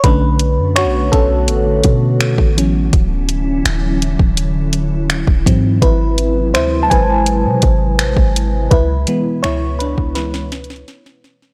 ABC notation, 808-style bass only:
X:1
M:4/4
L:1/16
Q:1/4=83
K:Bdor
V:1 name="808-style bass" clef=bass
B,,,3 F,,3/2 B,,,3/2 B,,,2 A,,,2 B,,3 A,,,3 | D,,,4 D,,,3 D,,,6 D,,, G,,2 | G,,,4 D,,2 G,,,3 B,, G,,,2 A,,, G,,,3 | C,,2 z2 C,,3 C,,4- C,, z4 |]